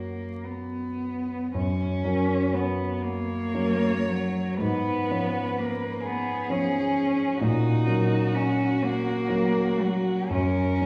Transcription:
0.00 1.50 F#2 soft
0.00 1.50 F#3 soft
0.00 0.45 A#3 soft
0.00 1.50 F#4 soft
0.00 1.50 A#4 soft
0.44 1.55 B3 soft
1.54 2.03 F#2 soft
1.54 2.55 C#4 medium
2.04 3.50 F#3 soft
2.04 3.50 C#4 soft
2.04 3.50 A#4 soft
2.54 3.04 B3 medium
3.02 4.08 A#3 medium
3.02 4.57 C#5 medium
3.54 4.57 F#3 soft
3.54 4.57 C#4 soft
3.54 4.57 A#4 soft
4.08 4.61 F#3 medium
4.60 5.09 G#2 soft
4.60 5.60 B3 medium
4.60 6.03 B4 soft
5.11 6.46 F3 soft
5.11 6.46 C#4 soft
5.11 6.46 C#5 soft
5.58 6.07 A#3 medium
6.02 6.52 B3 medium
6.02 7.40 G#4 medium
6.50 7.38 F3 soft
6.50 7.38 C#4 soft
6.50 7.42 C#4 medium
6.50 7.38 C#5 soft
7.41 7.86 A#2 soft
7.41 8.36 D#4 medium
7.41 10.33 F#4 medium
7.87 9.25 F#3 soft
7.87 9.25 C#4 soft
7.87 9.25 A#4 soft
8.34 8.83 C#4 medium
8.82 9.82 A#3 medium
9.28 10.28 F#3 soft
9.28 10.29 C#4 soft
9.28 10.28 A#4 soft
9.81 10.31 F#3 medium
10.30 10.78 F#2 soft
10.30 10.86 C#4 medium
10.30 10.86 A#4 medium
10.82 10.86 F#3 soft
10.82 10.86 C#4 soft
10.82 10.86 A#4 soft

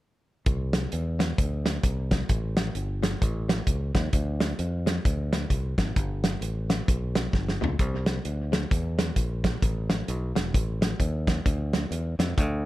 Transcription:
0.46 0.85 C2 medium
0.46 kick loud
0.46 closed hi-hat medium
0.73 snare loud
0.73 closed hi-hat medium
0.92 1.32 E2 medium
0.92 closed hi-hat medium
1.20 snare medium
1.20 closed hi-hat medium
1.38 1.77 D2 medium
1.38 kick loud
1.38 closed hi-hat medium
1.66 snare medium
1.66 closed hi-hat medium
1.83 2.23 C2 medium
1.83 kick medium
1.83 closed hi-hat medium
2.11 kick medium
2.11 snare medium
2.11 closed hi-hat medium
2.29 2.69 A1 medium
2.29 kick loud
2.29 closed hi-hat medium
2.57 snare loud
2.57 closed hi-hat medium
2.75 3.14 G1 medium
2.75 closed hi-hat medium
3.03 snare medium
3.03 closed hi-hat medium
3.22 3.61 A1 medium
3.22 kick loud
3.22 closed hi-hat medium
3.49 snare medium
3.49 closed hi-hat medium
3.67 3.91 C#2 medium
3.67 kick medium
3.67 closed hi-hat medium
3.95 4.10 D#2 medium
3.95 kick medium
3.95 snare medium
3.95 closed hi-hat medium
4.13 4.52 D2 medium
4.13 kick loud
4.13 closed hi-hat medium
4.40 snare loud
4.40 closed hi-hat medium
4.59 4.98 F2 medium
4.59 closed hi-hat medium
4.87 snare medium
4.87 closed hi-hat medium
5.05 5.44 D2 medium
5.05 kick loud
5.05 closed hi-hat medium
5.33 snare medium
5.33 closed hi-hat medium
5.50 5.74 C2 medium
5.50 kick medium
5.50 closed hi-hat medium
5.78 5.93 G#1 medium
5.78 kick medium
5.78 snare medium
5.78 closed hi-hat medium
5.96 6.35 G1 medium
5.96 kick loud
5.96 closed hi-hat medium
6.24 snare medium
6.24 closed hi-hat medium
6.41 6.80 A1 medium
6.41 closed hi-hat medium
6.70 snare medium
6.70 closed hi-hat medium
6.88 7.27 B1 medium
6.88 kick loud
6.88 closed hi-hat medium
7.15 snare loud
7.15 closed hi-hat medium
7.33 7.57 G1 medium
7.33 kick medium
7.33 snare soft
7.48 snare medium
7.62 7.77 C#2 medium
7.62 floor tom medium
7.79 8.18 C2 medium
7.79 kick loud
7.79 closed hi-hat medium
8.06 snare medium
8.06 closed hi-hat medium
8.25 8.64 D2 medium
8.25 closed hi-hat medium
8.53 snare medium
8.53 closed hi-hat medium
8.71 9.10 E2 medium
8.71 kick loud
8.71 closed hi-hat medium
8.99 snare medium
8.99 closed hi-hat medium
9.16 9.55 A#1 medium
9.16 kick medium
9.16 closed hi-hat medium
9.44 kick medium
9.44 snare medium
9.44 closed hi-hat medium
9.62 10.01 A1 medium
9.62 kick loud
9.62 closed hi-hat medium
9.90 snare loud
9.90 closed hi-hat medium
10.08 10.32 B1 medium
10.08 closed hi-hat medium
10.36 10.52 E1 medium
10.36 snare medium
10.36 closed hi-hat medium
10.54 10.93 A1 medium
10.54 kick loud
10.54 closed hi-hat medium
10.82 snare medium
10.82 closed hi-hat medium
11.00 11.39 D#2 medium
11.00 kick medium
11.00 closed hi-hat medium
11.27 kick medium
11.27 snare medium
11.27 closed hi-hat medium
11.46 11.85 D2 medium
11.46 kick loud
11.46 closed hi-hat medium
11.73 snare loud
11.73 closed hi-hat medium
11.91 12.15 E2 medium
11.91 closed hi-hat medium
12.19 12.34 F2 medium
12.19 snare medium
12.19 closed hi-hat medium
12.38 12.65 D2 medium
12.38 kick loud
12.38 closed hi-hat medium

